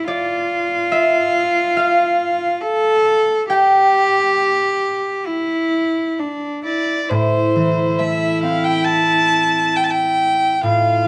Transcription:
0.04 2.62 F4 medium
0.04 1.92 D5 medium
0.92 1.83 E5 medium
1.77 3.55 F5 medium
2.61 3.48 A4 loud
3.48 5.27 G4 loud
3.48 6.15 G5 medium
5.26 6.20 E4 medium
6.19 6.64 D4 medium
6.64 7.07 E4 medium
6.64 7.10 D5 medium
7.08 10.62 A2 medium
7.08 10.57 E4 medium
7.08 8.00 C5 medium
7.56 10.68 E3 soft
7.99 11.08 A3 soft
7.99 8.42 E5 medium
8.43 11.08 C4 soft
8.43 8.66 F5 medium
8.64 8.86 G5 medium
8.85 9.78 A5 medium
9.76 9.86 G5 medium
9.84 9.92 A5 medium
9.91 10.63 G5 medium
10.63 11.08 A2 medium
10.63 11.08 F4 medium
10.63 11.08 F5 medium

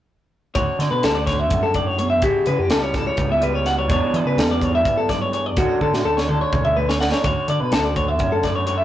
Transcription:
0.55 1.51 D2 medium
0.55 0.65 D2 medium
0.55 2.20 F#4 medium
0.55 0.80 C#5 medium
0.55 kick loud
0.55 closed hi-hat medium
0.79 0.89 D3 medium
0.79 1.27 D3 soft
0.79 0.90 D5 medium
0.79 snare soft
0.79 closed hi-hat medium
0.91 1.05 B2 medium
0.91 1.03 B4 medium
1.03 1.50 D2 medium
1.03 1.16 G3 medium
1.03 1.15 A4 medium
1.03 snare medium
1.03 closed hi-hat medium
1.15 2.23 A3 soft
1.15 1.26 D5 medium
1.26 2.23 D3 medium
1.26 1.39 C#5 medium
1.26 kick medium
1.26 snare soft
1.26 closed hi-hat soft
1.39 1.63 E5 medium
1.50 2.22 F#2 medium
1.50 1.76 G2 medium
1.50 kick medium
1.50 closed hi-hat medium
1.63 1.75 A4 medium
1.74 1.99 A2 medium
1.74 1.86 D5 medium
1.74 kick medium
1.74 closed hi-hat medium
1.86 1.98 C#5 medium
1.99 2.23 B2 medium
1.99 2.09 C#5 medium
1.99 closed hi-hat medium
2.10 2.22 E5 medium
2.22 2.32 C#2 medium
2.22 2.47 C#3 medium
2.22 3.65 F#4 medium
2.22 2.47 G4 medium
2.22 kick loud
2.22 closed hi-hat medium
2.46 2.56 C#3 medium
2.46 2.93 E3 medium
2.46 2.59 B4 medium
2.46 closed hi-hat medium
2.59 2.70 F#2 medium
2.59 2.71 G4 medium
2.70 3.09 C#2 medium
2.70 3.40 G3 soft
2.70 2.83 A4 medium
2.70 snare medium
2.70 closed hi-hat medium
2.83 2.95 C#5 medium
2.93 3.87 E3 medium
2.93 3.07 A4 medium
2.93 kick medium
2.93 snare soft
2.93 closed hi-hat soft
3.07 3.31 C#5 medium
3.17 3.89 C#2 medium
3.17 3.29 A3 medium
3.17 kick medium
3.17 closed hi-hat medium
3.29 3.89 B3 soft
3.29 3.43 E5 medium
3.41 3.88 G3 medium
3.41 3.55 B4 medium
3.41 closed hi-hat soft
3.55 3.67 C#5 medium
3.66 3.87 F#4 soft
3.66 3.78 F#5 medium
3.66 snare soft
3.66 closed hi-hat soft
3.78 3.90 C#5 medium
3.87 4.83 E2 medium
3.87 3.99 E2 medium
3.87 4.11 E3 medium
3.87 4.36 G3 medium
3.87 5.54 B3 medium
3.87 5.59 D4 medium
3.87 kick medium
3.87 closed hi-hat medium
3.91 4.16 C#5 medium
4.13 4.58 E3 medium
4.13 4.23 E3 medium
4.13 4.27 D5 medium
4.13 closed hi-hat medium
4.25 4.39 C#3 medium
4.25 4.38 B4 medium
4.37 4.85 E2 medium
4.37 5.57 G3 medium
4.37 4.50 A4 medium
4.37 snare loud
4.37 closed hi-hat medium
4.51 4.63 D5 medium
4.60 5.53 E3 medium
4.60 4.74 C#5 medium
4.60 kick medium
4.60 closed hi-hat soft
4.75 4.98 E5 medium
4.84 5.07 G2 medium
4.84 5.57 G2 medium
4.84 kick medium
4.84 closed hi-hat medium
4.97 5.09 A4 medium
5.07 5.32 F#2 medium
5.07 5.21 D5 medium
5.07 kick medium
5.07 snare soft
5.07 closed hi-hat soft
5.22 5.33 C#5 medium
5.32 5.57 E2 medium
5.32 5.46 C#5 medium
5.32 closed hi-hat soft
5.46 5.58 D5 medium
5.57 5.67 D2 medium
5.57 7.24 D2 medium
5.57 5.81 D3 medium
5.57 6.06 A3 medium
5.57 6.53 C#4 medium
5.57 7.00 D4 medium
5.57 5.81 F#4 medium
5.57 kick loud
5.57 closed hi-hat medium
5.81 5.91 D3 medium
5.81 6.29 D3 medium
5.81 5.94 A4 medium
5.81 kick soft
5.93 6.04 A2 medium
5.93 6.05 F#4 medium
5.93 snare soft
6.04 6.43 D2 medium
6.04 6.77 A3 medium
6.04 6.17 A4 medium
6.17 6.28 C#5 medium
6.17 snare soft
6.28 7.48 D3 medium
6.28 6.41 A4 medium
6.28 mid tom medium
6.41 6.64 C#5 medium
6.52 7.10 D2 medium
6.52 7.28 C#4 soft
6.52 kick medium
6.52 mid tom medium
6.65 6.77 E5 medium
6.65 mid tom medium
6.77 7.72 A3 medium
6.77 6.88 B4 medium
6.89 7.00 C#5 medium
6.89 snare medium
7.00 7.25 D4 soft
7.00 7.12 F#5 medium
7.00 snare medium
7.12 7.23 C#5 medium
7.12 snare medium
7.24 7.33 D2 medium
7.24 8.84 D2 medium
7.24 8.67 F#4 medium
7.24 7.48 C#5 medium
7.24 kick loud
7.24 closed hi-hat medium
7.48 7.58 D3 medium
7.48 7.96 D3 medium
7.48 7.60 D5 medium
7.48 closed hi-hat medium
7.60 7.73 B2 medium
7.60 7.72 B4 medium
7.72 8.19 D2 medium
7.72 8.43 A3 soft
7.72 7.84 A4 medium
7.72 snare loud
7.72 closed hi-hat medium
7.85 7.96 D5 medium
7.96 8.84 D3 medium
7.96 8.08 C#5 medium
7.96 kick medium
7.96 closed hi-hat soft
8.08 8.32 E5 medium
8.19 8.84 F#2 medium
8.19 8.84 C#4 medium
8.19 kick medium
8.19 closed hi-hat medium
8.32 8.44 A4 medium
8.43 8.84 A3 medium
8.43 8.55 D5 medium
8.43 kick medium
8.43 snare soft
8.43 closed hi-hat medium
8.56 8.66 C#5 medium
8.67 8.84 F#4 soft
8.67 8.77 C#5 medium
8.67 closed hi-hat soft
8.78 8.84 E5 medium

